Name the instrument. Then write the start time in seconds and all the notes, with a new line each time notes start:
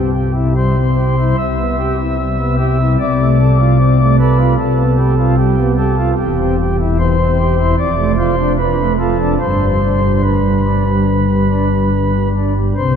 pipe organ
Already playing: C2 C3 C4 G4
0.12 G4
0.34 E4
0.56 G3 C5
0.76 C4
0.97 G4
1.18 E4
1.37 C2 C3 E5
1.58 B3
1.78 G4
1.98 E4
2.18 G3
2.39 B3
2.57 G4 E5
2.79 E4
2.99 C2 C3 D5
3.19 A3
3.39 A4
3.59 F4
3.78 C4
3.99 A3
4.19 A4 B4
4.39 F4
4.58 C2 C3 A4
4.78 B3
4.97 G4
5.18 F4
5.37 G3 G4
5.58 B3
5.78 G4 A4
5.97 F4
6.18 E1 E2 G4
6.37 C4
6.58 G4
6.80 E4
6.99 E3 C5
7.19 C4
7.38 G4
7.59 E4
7.79 F1 F2 D5
7.97 A3
8.17 F4 C5
8.39 D4
8.58 F3 B4
8.78 A3
8.99 F4 A4
9.21 D4
9.40 G1 G2 C5
9.62 G3
9.82 D4
10.02 G3
10.22 D3 B4
10.43 G3
10.64 D4
10.85 G3
11.07 D3
11.29 G3
11.50 D4
11.71 G3
11.93 D3
12.13 G3
12.35 D4
12.55 G3
12.76 C2 C3 C5